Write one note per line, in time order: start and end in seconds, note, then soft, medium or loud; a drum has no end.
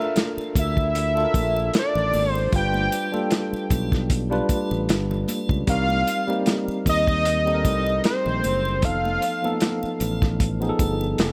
0.00 1.16 D4 medium
0.00 1.16 F4 medium
0.00 1.15 A4 medium
0.00 1.24 A#4 medium
0.00 0.13 E5 loud
0.16 snare loud
0.16 closed hi-hat medium
0.16 muted conga soft
0.16 high conga medium
0.16 muted triangle medium
0.37 muted fingered electric bass stroke soft
0.37 muted triangle medium
0.55 1.25 D2 medium
0.55 1.71 E5 loud
0.55 kick loud
0.55 closed hi-hat medium
0.55 muted conga soft
0.55 triangle medium
0.77 kick medium
0.77 muted triangle soft
0.95 closed hi-hat medium
0.95 muted conga soft
0.95 muted triangle medium
1.15 2.20 D4 medium
1.15 2.20 F4 medium
1.15 1.17 A4 medium
1.15 1.23 A4 medium
1.15 muted triangle soft
1.24 2.24 A#4 medium
1.34 1.69 A#1 medium
1.34 kick medium
1.34 closed hi-hat medium
1.34 high conga medium
1.34 triangle medium
1.57 muted triangle soft
1.74 snare loud
1.74 closed hi-hat medium
1.74 muted triangle medium
1.79 2.32 D5 loud
1.95 2.11 A1 medium
1.95 low conga medium
1.95 muted triangle soft
2.13 2.48 G#1 medium
2.13 open hi-hat medium
2.13 high conga medium
2.13 triangle medium
2.32 2.51 C5 loud
2.32 muted triangle soft
2.51 2.87 G1 medium
2.51 2.97 G3 medium
2.51 2.98 D4 medium
2.51 2.98 F4 medium
2.51 2.99 B4 medium
2.51 kick loud
2.51 closed hi-hat loud
2.51 muted conga soft
2.51 low conga medium
2.51 muted triangle soft
2.56 3.29 G5 loud
2.73 high conga medium
2.73 muted triangle soft
2.92 closed hi-hat medium
2.92 triangle medium
3.12 4.01 G3 medium
3.12 4.02 D4 medium
3.12 4.02 F4 medium
3.12 4.02 A4 medium
3.12 high conga medium
3.12 muted triangle soft
3.31 snare medium
3.31 closed hi-hat medium
3.31 muted conga soft
3.31 high conga medium
3.31 muted triangle medium
3.53 muted fingered electric bass stroke soft
3.53 muted triangle medium
3.70 4.40 B1 medium
3.70 kick medium
3.70 closed hi-hat medium
3.70 muted conga soft
3.70 triangle medium
3.92 kick medium
3.92 snare soft
3.92 muted triangle soft
4.10 kick medium
4.10 closed hi-hat medium
4.10 muted conga soft
4.10 muted triangle soft
4.30 5.34 G3 medium
4.30 5.35 D4 medium
4.30 5.35 F4 medium
4.30 5.36 B4 medium
4.30 muted triangle medium
4.49 muted fingered electric bass stroke medium
4.49 kick medium
4.49 closed hi-hat medium
4.49 high conga medium
4.49 triangle medium
4.71 4.87 A1 medium
4.71 muted triangle medium
4.89 5.24 G1 loud
4.89 snare loud
4.89 closed hi-hat medium
4.89 muted triangle medium
5.11 low conga medium
5.11 muted triangle soft
5.28 closed hi-hat medium
5.28 muted conga soft
5.28 high conga medium
5.28 triangle medium
5.49 5.65 C#2 medium
5.49 kick medium
5.49 muted triangle soft
5.67 6.02 C2 loud
5.67 6.13 G3 medium
5.67 6.13 C4 medium
5.67 6.13 D#4 medium
5.67 6.14 A#4 medium
5.67 6.43 F5 loud
5.67 kick loud
5.67 closed hi-hat loud
5.67 muted conga soft
5.67 low conga medium
5.67 muted triangle soft
5.88 high conga medium
5.88 muted triangle soft
6.07 closed hi-hat medium
6.07 triangle medium
6.27 7.17 G3 medium
6.27 7.17 C4 medium
6.27 7.18 D#4 medium
6.27 7.18 A#4 medium
6.27 high conga medium
6.27 muted triangle medium
6.46 snare loud
6.46 closed hi-hat medium
6.46 muted conga soft
6.46 high conga medium
6.46 muted triangle medium
6.68 muted fingered electric bass stroke medium
6.68 muted triangle medium
6.86 7.65 D#2 medium
6.86 8.02 D#5 loud
6.86 kick medium
6.86 closed hi-hat medium
6.86 triangle medium
7.07 kick medium
7.07 muted triangle soft
7.25 closed hi-hat loud
7.25 muted conga soft
7.25 muted triangle medium
7.45 8.49 G3 medium
7.45 8.50 C4 medium
7.45 8.50 D#4 medium
7.45 7.53 A4 medium
7.45 muted triangle soft
7.54 8.54 A#4 medium
7.65 7.99 C2 loud
7.65 kick medium
7.65 closed hi-hat medium
7.65 muted conga soft
7.65 high conga medium
7.65 triangle medium
7.87 muted triangle medium
8.04 8.86 C5 loud
8.04 snare loud
8.04 closed hi-hat medium
8.04 muted triangle medium
8.26 8.42 A#1 medium
8.26 low conga medium
8.26 muted triangle soft
8.43 8.83 F#1 medium
8.43 closed hi-hat medium
8.43 high conga medium
8.43 triangle medium
8.65 muted triangle soft
8.82 9.17 F1 loud
8.82 9.27 F3 medium
8.82 9.28 B3 medium
8.82 9.28 D#4 medium
8.82 9.29 A4 medium
8.82 9.62 F5 loud
8.82 kick loud
8.82 closed hi-hat loud
8.82 low conga medium
8.82 muted triangle soft
9.05 high conga medium
9.05 muted triangle soft
9.22 closed hi-hat medium
9.22 triangle medium
9.43 10.32 F3 medium
9.43 10.32 B3 medium
9.43 10.33 D#4 medium
9.43 10.33 A4 medium
9.43 high conga medium
9.43 muted triangle soft
9.60 snare medium
9.60 closed hi-hat medium
9.60 muted conga soft
9.60 high conga medium
9.60 muted triangle soft
9.83 muted fingered electric bass stroke soft
9.83 muted triangle medium
10.00 10.70 A1 medium
10.00 closed hi-hat medium
10.00 muted conga soft
10.00 triangle medium
10.22 kick medium
10.22 snare soft
10.22 muted triangle soft
10.40 kick medium
10.40 closed hi-hat medium
10.40 muted conga soft
10.40 muted triangle soft
10.60 11.32 F3 medium
10.60 11.32 B3 medium
10.60 11.19 D#4 medium
10.60 10.68 G#4 medium
10.60 muted triangle soft
10.69 11.23 A4 medium
10.79 11.14 G1 loud
10.79 kick medium
10.79 closed hi-hat medium
10.79 muted conga soft
10.79 high conga medium
10.79 triangle medium
11.01 muted triangle soft
11.18 11.32 F1 loud
11.18 snare loud
11.18 closed hi-hat medium
11.18 muted conga soft
11.18 muted triangle medium